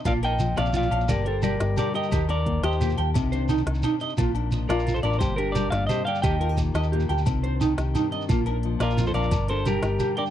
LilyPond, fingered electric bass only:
\new Staff \with { instrumentName = "Fingered electric bass" } { \clef bass \time 12/8 \key bes \major \tempo 4. = 117 bes,,4. bes,,4 bes,,8 g,,4. g,,8 r4 | ees,4. ees,4 ees,8 c,4. c,8 r4 | bes,,4. bes,,4 a,,8 g,,4. g,,8 r4 | ees,4. ees,4 d,8 c,4. c,8 r4 |
bes,,4. bes,,4 bes,,8 g,,4. g,,8 r4 | }